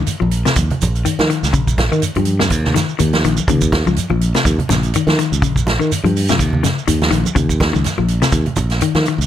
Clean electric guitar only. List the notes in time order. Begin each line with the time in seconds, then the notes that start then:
Already playing: D#3
0.20 F3
0.45 C3
1.05 D#3
1.30 D#3
1.53 C#3
1.92 D#3
2.17 F3
2.39 C3
2.74 D#3
2.99 D#3
3.25 D#3
3.49 C#3
3.87 F3
4.10 F3
4.35 C3
4.70 C#3
4.96 D#3
5.19 D#3
5.42 C#3
5.80 D#3
6.04 F3
6.29 C3
6.63 C#3
6.88 D#3
7.11 D#3
7.35 C#3
7.73 D#3
7.98 F3
8.22 C3
8.58 muted clean electric guitar stroke
8.82 D#3
9.08 D#3